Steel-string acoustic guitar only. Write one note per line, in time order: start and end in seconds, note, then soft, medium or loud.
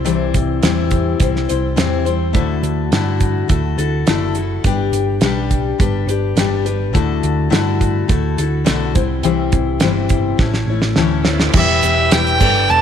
0.05 0.61 C3 medium
0.05 0.63 E3 medium
0.05 0.62 G3 medium
0.05 0.62 C4 medium
0.05 0.63 E4 medium
0.05 0.62 C5 medium
0.62 1.20 C3 medium
0.62 1.76 E3 medium
0.62 1.19 G3 medium
0.62 1.19 C4 medium
0.62 1.21 E4 medium
0.62 1.20 C5 loud
1.20 1.49 G3 medium
1.20 1.49 C4 medium
1.20 1.49 E4 medium
1.20 1.47 C5 medium
1.48 1.76 G3 soft
1.48 1.75 C4 medium
1.48 1.77 E4 soft
1.48 1.76 C5 medium
1.76 2.05 C3 medium
1.76 2.05 E3 medium
1.76 2.06 G3 medium
1.76 2.05 C4 medium
1.76 2.04 E4 medium
1.76 2.04 C5 medium
2.05 2.33 G3 soft
2.05 2.34 C4 soft
2.05 2.33 E4 medium
2.05 2.34 C5 medium
2.33 2.91 D3 medium
2.33 2.91 A3 medium
2.33 2.92 E4 medium
2.33 2.92 F#4 medium
2.33 2.92 A4 medium
2.92 3.50 D3 medium
2.92 3.47 A3 medium
2.92 3.48 E4 medium
2.92 3.48 F#4 loud
2.92 3.49 A4 medium
3.48 3.77 A3 medium
3.48 3.78 E4 medium
3.48 3.78 F#4 medium
3.48 3.77 A4 medium
3.78 4.07 E4 soft
3.78 4.07 F#4 medium
3.78 4.07 A4 medium
4.07 4.35 D3 medium
4.07 4.36 A3 medium
4.07 4.36 E4 medium
4.07 4.36 F#4 medium
4.07 4.34 A4 medium
4.35 4.65 E4 soft
4.35 4.65 F#4 soft
4.35 4.64 A4 medium
4.64 5.21 G3 medium
4.64 5.22 D4 medium
4.64 5.22 G4 medium
4.64 5.22 B4 medium
5.22 5.77 G3 medium
5.22 5.79 D4 medium
5.22 5.79 G4 loud
5.22 5.80 B4 loud
5.79 6.08 G3 medium
5.79 6.08 D4 medium
5.79 6.08 G4 medium
5.79 6.07 B4 medium
6.08 6.37 D4 soft
6.08 6.37 G4 medium
6.08 6.37 B4 medium
6.38 6.66 G3 medium
6.38 6.66 D4 medium
6.38 6.65 G4 medium
6.38 6.64 B4 medium
6.65 6.94 D4 soft
6.65 6.94 G4 soft
6.65 6.94 B4 medium
6.93 7.49 D3 medium
6.93 7.49 A3 medium
6.93 7.50 E4 medium
6.93 7.50 F#4 medium
6.93 7.51 A4 medium
7.50 8.08 D3 medium
7.50 8.07 A3 medium
7.50 8.08 E4 medium
7.50 8.08 F#4 loud
7.50 8.09 A4 medium
8.08 8.37 A3 medium
8.08 8.38 E4 medium
8.08 8.38 F#4 medium
8.08 8.37 A4 medium
8.38 8.64 E4 medium
8.38 8.65 F#4 medium
8.38 8.65 A4 medium
8.65 8.95 D3 medium
8.65 8.95 A3 medium
8.65 8.94 E4 medium
8.65 8.95 F#4 medium
8.65 8.94 A4 medium
8.95 9.23 G3 soft
8.95 9.23 C4 soft
8.95 9.24 E4 medium
8.95 9.24 C5 soft
9.23 9.81 C3 medium
9.23 9.80 E3 medium
9.23 9.81 G3 medium
9.23 9.82 C4 medium
9.23 9.82 E4 medium
9.23 9.82 C5 medium
9.81 10.40 C3 medium
9.81 10.40 E3 medium
9.81 10.39 G3 medium
9.81 10.40 C4 medium
9.81 10.40 E4 medium
9.81 10.41 C5 medium
10.39 10.68 A3 medium
10.39 10.69 C#4 medium
10.39 10.70 E4 medium
10.39 10.68 C#5 medium
10.69 10.96 A3 soft
10.69 10.97 C#4 soft
10.69 10.97 E4 medium
10.69 10.98 C#5 medium
10.97 11.26 A2 medium
10.97 11.27 E3 medium
10.97 11.26 A3 medium
10.97 11.25 C#4 medium
10.97 11.24 E4 medium
10.97 11.24 C#5 medium
11.25 11.53 A3 soft
11.25 11.54 C#4 soft
11.25 11.53 E4 medium
11.25 11.55 C#5 medium
11.53 12.12 E3 medium
11.53 12.11 G3 medium
11.53 12.12 E4 medium
11.53 12.12 G4 medium
11.53 12.13 B4 medium
12.12 12.41 G3 medium
12.12 12.42 E4 medium
12.12 12.41 G4 medium
12.12 12.39 B4 medium
12.40 12.82 G3 medium
12.40 12.82 D4 medium
12.40 12.82 A4 medium
12.40 12.82 B4 medium